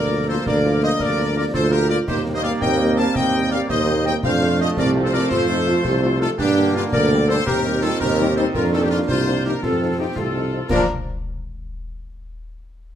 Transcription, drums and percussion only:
0.46 concert bass drum medium
0.46 snare medium
0.82 snare medium
1.00 concert bass drum medium
1.00 snare medium
1.54 concert bass drum medium
1.54 snare medium
2.08 concert bass drum medium
2.08 snare medium
2.08 crash medium
2.62 concert bass drum medium
2.62 snare medium
2.98 snare medium
3.15 concert bass drum medium
3.15 snare medium
3.51 snare medium
3.69 concert bass drum medium
3.69 snare medium
4.06 snare medium
4.23 concert bass drum medium
4.23 snare medium
4.23 crash soft
4.77 concert bass drum medium
4.77 snare medium
5.12 snare medium
5.31 concert bass drum medium
5.31 snare medium
5.67 snare medium
5.84 concert bass drum medium
5.84 snare loud
6.21 snare medium
6.39 concert bass drum loud
6.39 snare medium
6.39 crash soft
6.92 concert bass drum loud
6.92 snare medium
7.29 snare medium
7.47 concert bass drum medium
7.47 snare loud
7.83 snare medium
8.01 concert bass drum medium
8.01 snare medium
8.37 snare medium
8.54 concert bass drum loud
8.54 snare medium
8.54 crash soft
9.08 concert bass drum loud
9.08 snare medium
9.45 snare medium
9.63 concert bass drum medium
9.63 snare medium
10.16 concert bass drum medium
10.16 snare medium
10.69 concert bass drum loud
10.69 snare medium
10.69 crash medium

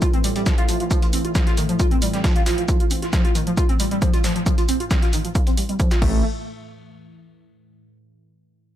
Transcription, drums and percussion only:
0.02 kick loud
0.02 closed hi-hat medium
0.02 shaker medium
0.14 closed hi-hat soft
0.24 open hi-hat loud
0.24 shaker medium
0.36 closed hi-hat soft
0.46 kick loud
0.46 snare loud
0.46 closed hi-hat medium
0.46 shaker medium
0.58 closed hi-hat medium
0.69 open hi-hat loud
0.69 shaker medium
0.80 closed hi-hat medium
0.91 kick loud
0.91 closed hi-hat medium
0.91 shaker medium
1.02 closed hi-hat soft
1.02 closed hi-hat medium
1.13 open hi-hat loud
1.13 shaker medium
1.25 closed hi-hat medium
1.35 kick loud
1.35 snare loud
1.35 closed hi-hat medium
1.35 shaker medium
1.47 snare medium
1.47 closed hi-hat soft
1.57 open hi-hat loud
1.57 shaker medium
1.69 closed hi-hat medium
1.80 kick loud
1.80 closed hi-hat medium
1.80 shaker medium
1.91 closed hi-hat medium
2.02 open hi-hat loud
2.02 shaker medium
2.13 snare medium
2.13 closed hi-hat medium
2.24 kick loud
2.24 snare loud
2.24 closed hi-hat medium
2.24 open hi-hat medium
2.36 closed hi-hat medium
2.46 snare loud
2.46 open hi-hat loud
2.46 shaker medium
2.58 closed hi-hat medium
2.68 kick loud
2.68 closed hi-hat medium
2.68 shaker medium
2.80 closed hi-hat medium
2.91 open hi-hat loud
2.91 shaker medium
3.02 snare soft
3.02 closed hi-hat medium
3.13 kick loud
3.13 snare loud
3.13 closed hi-hat medium
3.13 shaker medium
3.25 closed hi-hat soft
3.35 open hi-hat loud
3.35 shaker medium
3.47 closed hi-hat medium
3.57 kick loud
3.57 closed hi-hat medium
3.57 shaker medium
3.69 closed hi-hat medium
3.80 open hi-hat loud
3.80 shaker medium
3.91 closed hi-hat medium
4.02 kick loud
4.02 closed hi-hat medium
4.02 shaker medium
4.13 closed hi-hat soft
4.13 closed hi-hat medium
4.24 snare loud
4.24 open hi-hat loud
4.24 shaker medium
4.36 closed hi-hat medium
4.46 kick loud
4.46 closed hi-hat medium
4.46 shaker medium
4.58 closed hi-hat soft
4.58 closed hi-hat medium
4.68 open hi-hat loud
4.68 shaker medium
4.80 closed hi-hat medium
4.91 kick loud
4.91 snare loud
4.91 closed hi-hat medium
4.91 shaker medium
5.02 snare medium
5.02 closed hi-hat medium
5.13 open hi-hat loud
5.13 shaker medium
5.25 closed hi-hat medium
5.35 kick loud
5.35 closed hi-hat medium
5.35 shaker medium
5.47 closed hi-hat soft
5.47 closed hi-hat medium
5.57 open hi-hat loud
5.69 closed hi-hat medium
5.80 kick loud
5.80 closed hi-hat medium
5.80 shaker medium
5.91 snare loud
5.91 closed hi-hat medium
5.91 shaker medium
6.02 kick loud
6.02 crash medium

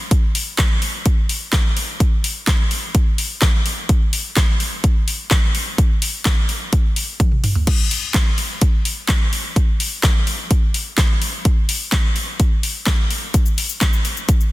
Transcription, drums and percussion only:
0.11 kick loud
0.11 closed hi-hat medium
0.35 open hi-hat medium
0.58 kick loud
0.58 snare medium
0.58 clap loud
0.58 closed hi-hat medium
0.82 open hi-hat medium
1.06 kick loud
1.06 closed hi-hat medium
1.29 open hi-hat medium
1.53 kick loud
1.53 snare medium
1.53 clap loud
1.53 closed hi-hat medium
1.77 open hi-hat medium
2.00 kick loud
2.00 closed hi-hat medium
2.24 open hi-hat medium
2.47 kick loud
2.47 snare medium
2.47 clap loud
2.47 closed hi-hat medium
2.71 open hi-hat medium
2.95 kick loud
2.95 closed hi-hat medium
3.18 open hi-hat medium
3.42 kick loud
3.42 snare medium
3.42 clap loud
3.42 closed hi-hat medium
3.66 open hi-hat medium
3.89 kick loud
3.89 closed hi-hat medium
4.13 open hi-hat medium
4.36 kick loud
4.36 snare medium
4.36 clap loud
4.36 closed hi-hat medium
4.60 open hi-hat medium
4.84 kick loud
4.84 closed hi-hat medium
5.08 open hi-hat medium
5.31 kick loud
5.31 snare medium
5.31 clap loud
5.31 closed hi-hat medium
5.55 open hi-hat medium
5.78 kick loud
5.78 closed hi-hat medium
6.02 open hi-hat medium
6.25 kick loud
6.25 snare medium
6.25 clap loud
6.25 closed hi-hat medium
6.49 open hi-hat medium
6.73 kick loud
6.73 closed hi-hat medium
6.96 open hi-hat medium
7.20 kick loud
7.20 closed hi-hat medium
7.20 high tom medium
7.32 mid tom medium
7.44 mid tom loud
7.44 open hi-hat medium
7.55 floor tom loud
7.67 kick loud
7.67 closed hi-hat medium
7.67 crash loud
7.91 open hi-hat medium
8.14 kick loud
8.14 snare medium
8.14 clap loud
8.14 closed hi-hat medium
8.38 open hi-hat medium
8.61 kick loud
8.61 closed hi-hat medium
8.85 open hi-hat medium
9.08 kick loud
9.08 snare medium
9.08 clap loud
9.08 closed hi-hat medium
9.33 open hi-hat medium
9.56 kick loud
9.56 closed hi-hat medium
9.80 open hi-hat medium
10.03 kick loud
10.03 snare medium
10.03 clap loud
10.03 closed hi-hat medium
10.27 open hi-hat medium
10.51 kick loud
10.51 closed hi-hat medium
10.74 open hi-hat medium
10.98 kick loud
10.98 snare medium
10.98 clap loud
10.98 closed hi-hat medium
11.22 open hi-hat medium
11.45 kick loud
11.45 closed hi-hat medium
11.69 open hi-hat medium
11.92 kick loud
11.92 snare medium
11.92 clap loud
11.92 closed hi-hat medium
12.16 open hi-hat medium
12.40 kick loud
12.40 closed hi-hat medium
12.63 open hi-hat medium
12.86 kick loud
12.86 snare medium
12.86 clap loud
12.86 closed hi-hat medium
13.10 open hi-hat medium
13.34 kick loud
13.34 closed hi-hat medium
13.34 shaker medium
13.46 shaker medium
13.58 open hi-hat loud
13.58 shaker medium
13.69 shaker medium
13.81 kick loud
13.81 snare medium
13.81 clap loud
13.81 closed hi-hat medium
13.81 shaker medium
13.93 shaker medium
14.05 open hi-hat medium
14.05 shaker soft
14.17 shaker medium
14.29 kick loud
14.29 closed hi-hat medium
14.29 shaker medium
14.41 shaker medium

